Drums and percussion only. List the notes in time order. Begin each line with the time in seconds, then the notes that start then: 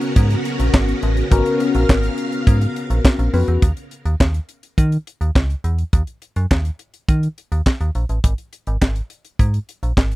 0.01 closed hi-hat
0.16 kick, closed hi-hat
0.30 closed hi-hat
0.45 closed hi-hat
0.59 closed hi-hat
0.74 kick, snare, clap
0.88 closed hi-hat
1.02 closed hi-hat
1.17 closed hi-hat
1.31 kick, closed hi-hat
1.46 closed hi-hat
1.60 closed hi-hat
1.74 closed hi-hat
1.89 kick, snare, clap
2.03 closed hi-hat
2.18 closed hi-hat
2.32 closed hi-hat
2.47 kick, closed hi-hat
2.61 closed hi-hat
2.76 closed hi-hat
2.90 closed hi-hat
3.05 kick, snare, clap
3.19 closed hi-hat
3.34 open hi-hat
3.48 closed hi-hat
3.62 kick, closed hi-hat
3.77 closed hi-hat
3.91 closed hi-hat
4.05 closed hi-hat
4.20 kick, snare, clap
4.34 closed hi-hat
4.49 closed hi-hat
4.63 closed hi-hat
4.78 kick, closed hi-hat
4.92 closed hi-hat
5.07 closed hi-hat
5.21 closed hi-hat
5.35 kick, snare, clap
5.50 closed hi-hat
5.64 closed hi-hat
5.78 closed hi-hat
5.93 kick, closed hi-hat
6.07 closed hi-hat
6.22 closed hi-hat
6.36 closed hi-hat
6.51 kick, snare, clap
6.65 closed hi-hat
6.79 closed hi-hat
6.94 closed hi-hat
7.09 kick, closed hi-hat
7.23 closed hi-hat
7.38 closed hi-hat
7.52 closed hi-hat
7.66 kick, snare, clap
7.81 closed hi-hat
7.95 closed hi-hat
8.09 closed hi-hat
8.24 kick, closed hi-hat
8.38 closed hi-hat
8.53 closed hi-hat
8.67 closed hi-hat
8.82 kick, snare, clap
8.96 closed hi-hat
9.10 closed hi-hat
9.25 closed hi-hat
9.39 kick, closed hi-hat
9.54 closed hi-hat
9.69 closed hi-hat
9.83 closed hi-hat
9.97 kick, snare, clap
10.12 closed hi-hat